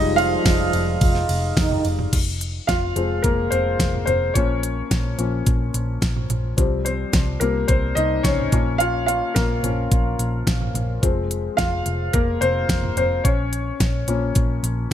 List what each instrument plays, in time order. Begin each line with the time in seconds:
Already playing: picked electric bass F1, french horn section F3 F4, upright piano G3 G#3 D#4 D#5
0.16 upright piano F4 F5, ride
0.45 picked electric bass F1, kick, snare, ride
0.73 picked electric bass F1, ride
1.01 picked electric bass F1, kick, ride
1.15 snare
1.29 picked electric bass F1, ride
1.56 picked electric bass F1, french horn section D#3 D#4, kick, snare, ride
1.71 floor tom
1.85 picked electric bass F1, ride
1.99 floor tom
2.13 picked electric bass F1, kick, closed hi-hat, crash
2.41 closed hi-hat
2.67 picked electric bass F1, upright piano F4 F5, kick, snare, closed hi-hat
2.96 picked electric bass F1, upright piano F3 G#3 C4, closed hi-hat
3.22 picked electric bass F1, upright piano A#3 A#4, kick, closed hi-hat
3.50 picked electric bass F1, upright piano C4 C5, closed hi-hat
3.79 picked electric bass F1, kick, snare, closed hi-hat
3.94 floor tom
4.06 picked electric bass F1, upright piano C4 C5, closed hi-hat, floor tom
4.34 picked electric bass A#1, upright piano F3 A#3 C#4 C#5, kick, closed hi-hat
4.63 closed hi-hat
4.91 picked electric bass A#1, kick, snare, closed hi-hat
5.18 picked electric bass A#1, upright piano F3 A#3 C#4, closed hi-hat
5.46 picked electric bass A#1, kick, closed hi-hat
5.74 picked electric bass A#1, closed hi-hat
6.02 picked electric bass A#1, kick, snare, closed hi-hat
6.16 floor tom
6.30 picked electric bass A#1, closed hi-hat, floor tom
6.57 picked electric bass C2, upright piano F3 G3 C4, kick, closed hi-hat
6.85 upright piano C4 C5, closed hi-hat
7.13 picked electric bass C2, kick, snare, closed hi-hat
7.40 picked electric bass C2, upright piano F3 G3 A#3 C4 A#4, closed hi-hat
7.68 picked electric bass C2, upright piano C4 C5, kick, closed hi-hat
7.95 picked electric bass C2, upright piano D#4 D#5, closed hi-hat
8.23 picked electric bass C2, upright piano C#4 C#5, kick, snare, closed hi-hat
8.39 floor tom
8.52 picked electric bass A#1, upright piano F3 A#3 C#4, kick, closed hi-hat, floor tom
8.78 upright piano F4 F5, closed hi-hat
9.06 upright piano F4 F5, closed hi-hat
9.34 picked electric bass A#1, upright piano A#3 A#4, kick, snare, closed hi-hat
9.63 picked electric bass A#1, upright piano F3 A#3 C#4, closed hi-hat, floor tom
9.92 picked electric bass A#1, kick, closed hi-hat
10.19 picked electric bass A#1, closed hi-hat
10.47 picked electric bass A#1, kick, snare, closed hi-hat
10.62 floor tom
10.74 picked electric bass A#1, closed hi-hat, floor tom
11.02 picked electric bass F1, upright piano F3 G#3 C4, kick, closed hi-hat
11.31 closed hi-hat
11.57 picked electric bass F1, upright piano F4 F5, kick, snare, closed hi-hat
11.86 picked electric bass F1, closed hi-hat
12.13 picked electric bass F1, upright piano A#3 A#4, kick, closed hi-hat
12.41 picked electric bass F1, upright piano C4 C5, closed hi-hat
12.69 picked electric bass F1, kick, snare, closed hi-hat
12.84 floor tom
12.97 picked electric bass F1, upright piano C4 C5, closed hi-hat, floor tom
13.24 picked electric bass A#1, upright piano C#4 C#5, kick, closed hi-hat
13.53 closed hi-hat
13.80 picked electric bass A#1, kick, snare, closed hi-hat
14.08 picked electric bass A#1, upright piano F3 A#3 C#4, closed hi-hat
14.35 picked electric bass A#1, kick, closed hi-hat
14.63 picked electric bass A#1, closed hi-hat